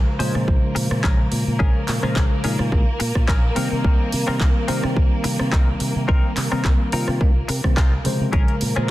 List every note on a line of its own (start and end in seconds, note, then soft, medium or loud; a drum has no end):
0.00 0.17 C#3 medium
0.00 0.17 F3 medium
0.00 0.17 G#3 medium
0.00 8.32 A#3 medium
0.00 8.32 A#4 medium
0.00 0.17 C5 medium
0.19 0.31 A#2 medium
0.19 1.99 C#3 loud
0.19 2.00 F3 medium
0.19 2.00 G#3 medium
0.19 0.35 C#4 medium
0.19 0.35 G#4 medium
0.19 0.35 C5 medium
0.19 2.00 C5 loud
0.19 open hi-hat loud
0.35 0.44 A#2 medium
0.35 cross-stick medium
0.47 0.59 A#1 loud
0.47 muted clean electric guitar stroke soft
0.47 kick loud
0.75 0.87 A#2 medium
0.75 muted clean electric guitar stroke loud
0.75 open hi-hat loud
0.91 1.00 A#2 medium
0.91 muted clean electric guitar stroke soft
0.91 cross-stick medium
1.03 1.25 A#1 medium
1.03 1.19 C#4 medium
1.03 1.19 G#4 medium
1.03 1.19 A#4 medium
1.03 kick loud
1.03 clap loud
1.32 1.43 A#2 medium
1.32 muted clean electric guitar stroke soft
1.32 open hi-hat loud
1.47 1.56 A#2 medium
1.59 1.71 A#1 loud
1.59 1.81 C#4 loud
1.59 1.82 G#4 loud
1.59 1.82 A#4 loud
1.59 kick loud
1.88 1.99 A#2 medium
1.88 clap medium
1.88 open hi-hat loud
2.02 2.13 A#2 medium
2.02 2.41 C#3 medium
2.02 2.41 F3 medium
2.02 2.41 G#3 medium
2.02 2.24 C#4 medium
2.02 2.24 G#4 medium
2.02 2.24 A#4 medium
2.02 2.41 C5 medium
2.02 cross-stick medium
2.16 2.27 A#1 medium
2.16 kick loud
2.16 clap loud
2.43 2.55 A#2 medium
2.43 2.69 C#3 medium
2.43 2.69 F3 medium
2.43 2.69 G#3 medium
2.43 2.59 C#4 medium
2.43 2.69 D#4 medium
2.43 2.60 G#4 medium
2.43 2.60 A#4 medium
2.43 open hi-hat loud
2.59 2.69 A#2 medium
2.59 cross-stick medium
2.72 2.83 A#1 loud
2.72 2.82 C#3 medium
2.72 2.82 F3 medium
2.72 2.82 G#3 medium
2.72 2.82 A#3 medium
2.72 muted clean electric guitar stroke soft
2.72 kick loud
3.00 3.11 A#2 medium
3.00 muted clean electric guitar stroke loud
3.00 open hi-hat loud
3.15 3.25 A#2 medium
3.15 muted clean electric guitar stroke soft
3.15 kick medium
3.15 cross-stick medium
3.28 3.49 A#1 medium
3.28 3.43 C#4 medium
3.28 3.44 G#4 medium
3.28 3.44 A#4 medium
3.28 kick loud
3.28 clap loud
3.55 3.67 C3 medium
3.55 4.23 D#3 medium
3.55 4.24 G3 medium
3.55 4.24 A#3 medium
3.55 4.12 C4 medium
3.55 4.24 C4 loud
3.55 4.12 D#4 medium
3.55 4.12 A#4 loud
3.55 open hi-hat loud
3.72 3.81 C3 medium
3.84 3.95 C2 loud
3.84 kick loud
4.12 4.24 C3 medium
4.12 open hi-hat loud
4.27 4.37 C3 medium
4.27 4.65 D#3 medium
4.27 4.65 G3 medium
4.27 4.66 A#3 medium
4.27 4.48 C4 medium
4.27 4.66 C4 medium
4.27 4.48 D#4 medium
4.27 4.48 A#4 medium
4.27 cross-stick medium
4.40 4.51 C2 medium
4.40 kick loud
4.40 clap loud
4.67 4.80 C3 medium
4.67 6.48 D#3 medium
4.67 6.48 G3 medium
4.67 6.49 A#3 medium
4.67 4.84 C4 medium
4.67 6.49 C4 loud
4.67 4.84 D#4 medium
4.67 4.84 A#4 medium
4.67 open hi-hat loud
4.84 4.93 C3 loud
4.84 cross-stick medium
4.96 5.08 C2 medium
4.96 muted clean electric guitar stroke soft
4.96 kick loud
5.24 5.36 C3 medium
5.24 muted clean electric guitar stroke loud
5.24 open hi-hat loud
5.39 5.49 C3 medium
5.39 muted clean electric guitar stroke soft
5.39 cross-stick medium
5.52 5.73 C2 medium
5.52 5.68 C4 medium
5.52 5.68 D#4 medium
5.52 5.68 A#4 medium
5.52 kick loud
5.52 clap loud
5.80 5.92 C3 medium
5.80 muted clean electric guitar stroke soft
5.80 open hi-hat loud
5.96 6.05 C3 medium
6.08 6.20 C2 loud
6.08 6.30 C4 loud
6.08 6.30 D#4 medium
6.08 6.30 A#4 loud
6.08 kick loud
6.37 6.48 C3 medium
6.37 clap medium
6.37 open hi-hat loud
6.51 6.61 C3 medium
6.51 6.89 D#3 medium
6.51 6.90 G3 medium
6.51 6.90 A#3 medium
6.51 6.72 C4 medium
6.51 6.90 C4 medium
6.51 6.72 D#4 medium
6.51 6.72 A#4 medium
6.51 cross-stick medium
6.65 6.76 C2 medium
6.65 kick loud
6.65 clap loud
6.92 7.04 C3 medium
6.92 7.18 D#3 medium
6.92 7.18 G3 medium
6.92 7.18 A#3 medium
6.92 7.08 C4 medium
6.92 7.08 D#4 medium
6.92 7.18 F4 medium
6.92 7.08 A#4 medium
6.92 open hi-hat loud
7.08 7.17 C3 medium
7.08 cross-stick medium
7.21 7.42 C2 medium
7.21 7.31 D#3 medium
7.21 7.31 G3 medium
7.21 7.31 A#3 medium
7.21 7.31 C4 medium
7.21 muted clean electric guitar stroke soft
7.21 kick loud
7.48 7.60 C3 medium
7.48 muted clean electric guitar stroke loud
7.48 open hi-hat loud
7.64 7.73 C3 medium
7.64 7.72 D#3 medium
7.64 7.72 G3 medium
7.64 7.73 A#3 medium
7.64 7.73 C4 medium
7.64 muted clean electric guitar stroke soft
7.64 kick medium
7.64 cross-stick medium
7.76 7.98 C2 medium
7.76 7.92 C4 medium
7.76 7.92 D#4 medium
7.76 7.92 F4 medium
7.76 kick loud
7.76 clap loud
8.04 8.16 C3 medium
8.04 8.72 C#3 medium
8.04 8.73 F3 medium
8.04 8.73 G#3 medium
8.04 8.73 C5 medium
8.04 muted clean electric guitar stroke soft
8.04 open hi-hat loud
8.21 8.30 C3 medium
8.33 8.44 A#1 loud
8.33 8.91 A#3 medium
8.33 8.54 C#4 loud
8.33 8.55 G#4 loud
8.33 8.91 A#4 medium
8.33 8.55 A#4 loud
8.33 kick loud
8.33 closed hi-hat medium
8.48 closed hi-hat soft
8.61 8.72 A#2 medium
8.61 open hi-hat loud
8.76 8.86 A#2 medium
8.76 8.91 C#3 medium
8.76 8.91 F3 medium
8.76 8.91 G#3 medium
8.76 8.91 C#4 medium
8.76 8.91 G#4 medium
8.76 8.91 A#4 medium
8.76 8.91 C5 medium
8.76 cross-stick medium
8.76 closed hi-hat soft